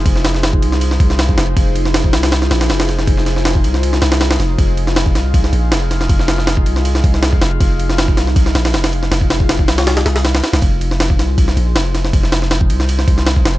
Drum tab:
RD |x-x-x-x-x-x-x-x-|x-x-x-xxx-xxxxx-|x-x-x-x-x-xxx-x-|x-x-x-x-x-x-x-x-|
SD |-oooo--o-o-oo-o-|---oo-oooooooooo|-oooo--o-oooooo-|---oo-o--o--o-oo|
BD |o----o----o--o--|o----o----------|o----o----------|o----o--o-------|

RD |x-x-x-x-x-x-x-x-|x-x-x-x-x-xxxxx-|x-x-x-xxxxxxx-xx|x-x-x-x-x-x-x-x-|
SD |-oooo--o-o-oo-o-|---oo-oo-ooooo-o|o-o-o-oooooooooo|---oo-o--o--o-oo|
BD |o----o----o--o--|o----o--o-------|-o-o-o----------|o----o--o-------|

RD |x-x-x-x-x-x-x-x-|
SD |-oooo--o-o-oo-o-|
BD |o----o----o--o--|